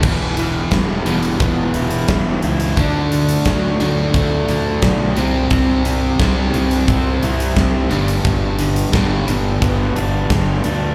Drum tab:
CC |x---------------|----------------|----------------|----------------|
HH |--x-x-xxx-xxx-xx|x-xxx-x-x-x-x-x-|x-x-x-xxx-xxx-xx|x-xxx-x-x-x-x-x-|
SD |----o-------o---|----o-------o---|----o--o----o---|----o-------o---|
BD |o---o---o---o---|o---o---o---o---|o---o---o---o---|o---o---o---o---|